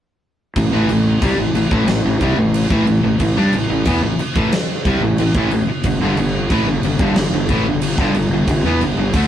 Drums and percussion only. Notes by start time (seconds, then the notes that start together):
0.56 kick, crash
0.89 crash
1.22 kick, crash
1.55 crash
1.71 kick
1.88 snare, crash
2.21 kick, crash
2.54 crash
2.70 kick
2.87 crash
3.20 kick, crash
3.53 crash
3.85 kick, crash
4.19 crash
4.36 kick
4.52 snare, crash
4.85 kick, crash
5.18 crash
5.35 kick
5.51 crash
5.84 kick, crash
6.17 crash
6.50 kick, crash
6.83 crash
6.99 kick
7.16 snare, crash
7.49 kick, crash
7.82 crash
7.98 kick
8.14 crash
8.48 kick, crash
8.81 crash
9.14 kick, crash